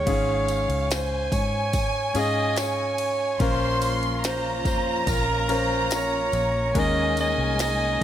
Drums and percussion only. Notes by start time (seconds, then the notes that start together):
0.06 kick, ride, tambourine
0.48 ride, tambourine
0.70 ride
0.91 snare, ride, tambourine
1.32 kick, ride, tambourine
1.73 kick, ride, tambourine
2.15 ride, tambourine
2.56 snare, ride, tambourine
2.98 ride
3.40 kick, ride, tambourine
3.81 ride, tambourine
4.03 ride
4.24 snare, ride, tambourine
4.65 kick, ride, tambourine
5.07 kick, ride, tambourine
5.49 ride, tambourine
5.91 snare, ride, tambourine
6.32 ride, tambourine
6.75 kick, ride, tambourine
7.17 ride, tambourine
7.59 snare, ride, tambourine